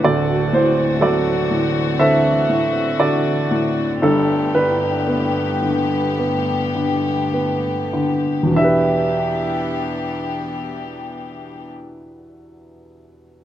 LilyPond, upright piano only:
<<
  \new Staff \with { instrumentName = "Upright piano" } { \time 4/4 \key e \minor \tempo 4 = 54 << { d''8 c''8 d''4 e''4 d''4 | a'8 b'2 r4. | e''1 | } \\ { <fis' a'>4 <fis' a'>4 <a' c''>4 <fis' a'>4 | d'8 d'2 r4. | r1 | } >> }
  \new Staff \with { instrumentName = "Upright piano" } { \clef bass \time 4/4 \key e \minor <d,, d,>8 a,8 fis8 a,8 d8 a,8 d8 a,8 | <g,, g,>8 d8 b8 d8 b8 d8 b8 d8 | <e, b, e d' g' b'>1 | }
>>